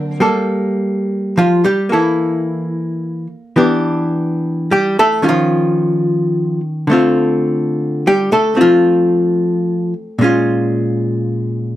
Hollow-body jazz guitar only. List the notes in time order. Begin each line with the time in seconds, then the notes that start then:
Already playing: D3 A#3 C4
0.20 G3 A#3 A4
1.38 F3 F4
1.64 G3 G4
1.89 E3 A#3 A4
1.93 E4
3.56 E3 B3 D4 G4
4.71 G3 G4
4.99 A3 A4
5.22 D#3 G3 C#4 F4
5.29 F3 F4
6.87 D3 A3 C4
6.93 F4
8.07 G3 G4
8.32 A3 A4
8.55 A3 C4 F4
8.61 F3 F4
10.19 A#2 G#3 C#4
10.24 F4